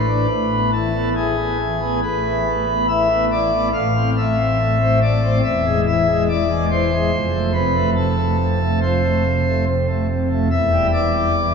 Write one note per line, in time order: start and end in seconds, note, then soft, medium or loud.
0.00 0.26 A1 medium
0.00 0.26 A2 medium
0.00 0.71 B4 medium
0.08 0.26 D4 soft
0.29 2.01 A1 medium
0.29 2.01 A2 medium
0.52 0.71 B3 soft
0.72 0.92 E3 soft
0.72 1.10 A4 medium
0.94 1.14 B3 medium
1.15 1.35 E3 medium
1.15 2.00 G#4 medium
1.38 1.57 B3 soft
1.59 1.79 E3 soft
1.81 2.00 B3 soft
2.03 3.70 A1 medium
2.03 3.70 A2 medium
2.03 2.86 B4 medium
2.25 2.44 E3 medium
2.46 2.66 A3 medium
2.68 2.87 B3 soft
2.89 3.08 E3 medium
2.89 3.25 E5 medium
3.11 3.30 B3 medium
3.32 3.51 E3 soft
3.32 3.68 D5 medium
3.53 3.71 B3 medium
3.74 5.40 A1 medium
3.74 5.40 A2 medium
3.74 4.10 F5 loud
3.96 4.14 C4 soft
4.17 4.36 A3 medium
4.17 4.99 E5 medium
4.39 4.57 C4 medium
4.60 4.78 A3 medium
4.81 4.99 C4 medium
5.02 5.21 A3 medium
5.02 5.38 D5 medium
5.23 5.41 C4 medium
5.44 7.09 E1 medium
5.44 7.10 E2 medium
5.44 5.81 E5 loud
5.66 5.85 G#3 medium
5.87 6.06 E3 medium
5.87 6.23 E5 medium
6.08 6.27 G#3 soft
6.30 6.49 E3 medium
6.30 6.65 D5 medium
6.50 6.69 G#3 medium
6.71 6.90 E3 soft
6.71 7.52 C5 medium
6.93 7.10 G#3 medium
7.12 10.47 F1 medium
7.12 10.47 F2 medium
7.34 7.52 A3 medium
7.54 7.73 C3 medium
7.54 7.90 B4 medium
7.75 7.94 A3 medium
7.96 8.16 C3 medium
7.96 8.80 A4 medium
8.17 8.37 A3 medium
8.39 8.58 C3 medium
8.61 8.80 A3 medium
8.82 9.01 F3 medium
8.82 9.64 C5 medium
9.04 9.23 A3 medium
9.25 9.44 C3 medium
9.47 9.66 A3 medium
9.68 9.86 C3 medium
9.89 10.07 A3 medium
10.09 10.28 C3 medium
10.31 10.48 A3 medium
10.51 11.54 E1 medium
10.51 11.54 E2 medium
10.51 10.87 E5 loud
10.72 10.91 G3 medium
10.94 11.12 E3 medium
10.94 11.54 D5 loud
11.14 11.33 G3 medium
11.36 11.54 E3 medium